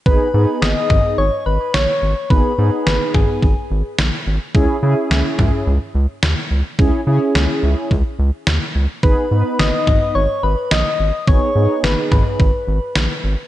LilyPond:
<<
  \new Staff \with { instrumentName = "Soft synth lead" } { \time 4/4 \key gis \minor \tempo 4 = 107 b'4 dis''4 cis''8 b'8 cis''4 | b'4 b'8 gis'4. r4 | r1 | r1 |
b'4 dis''4 cis''8 b'8 dis''4 | cis''4 b'8 b'4. r4 | }
  \new Staff \with { instrumentName = "Analog polysynth" } { \time 4/4 \key gis \minor <b dis' gis'>8 <b dis' gis'>4. r2 | <b dis' gis'>8 <b dis' gis'>4. r2 | <cis' e' gis'>8 <cis' e' gis'>4. r2 | <cis' e' gis'>8 <cis' e' gis'>4. r2 |
<b dis' gis'>8 <b dis' b'>4. r2 | <b dis' gis'>8 <b dis' gis'>4. r2 | }
  \new Staff \with { instrumentName = "Analog synth bass" } { \clef bass \time 4/4 \key gis \minor gis,,16 r16 gis,16 r16 gis,,16 r16 gis,,16 r16 gis,,16 r16 gis,,16 r16 ais,,16 r16 gis,,16 r16 | gis,,16 r16 gis,16 r16 gis,,16 r16 gis,,16 r16 gis,,16 r16 gis,,16 r16 ais,,16 r16 gis,,16 r16 | cis,16 r16 cis16 r16 cis,16 r16 cis,16 r16 cis,16 r16 cis,16 r16 dis,16 r16 cis,16 r16 | cis,16 r16 cis16 r16 cis,16 r16 cis,16 r16 cis,16 r16 cis,16 r16 dis,16 r16 cis,16 r16 |
gis,,16 r16 gis,16 r16 gis,,16 r16 gis,,16 r16 gis,,16 r16 gis,,16 r16 ais,,16 r16 gis,,16 r16 | gis,,16 r16 gis,16 r16 gis,,16 r16 gis,,16 r16 gis,,16 r16 gis,,16 r16 ais,,16 r16 gis,,16 r16 | }
  \new DrumStaff \with { instrumentName = "Drums" } \drummode { \time 4/4 bd4 sn8 <bd toml>8 r4 sn4 | bd4 sn8 <bd toml>8 bd4 sn4 | bd4 sn8 <bd toml>8 r4 sn4 | bd4 sn4 bd4 sn4 |
bd4 sn8 <bd toml>8 r4 sn4 | bd4 sn8 <bd toml>8 bd4 sn4 | }
>>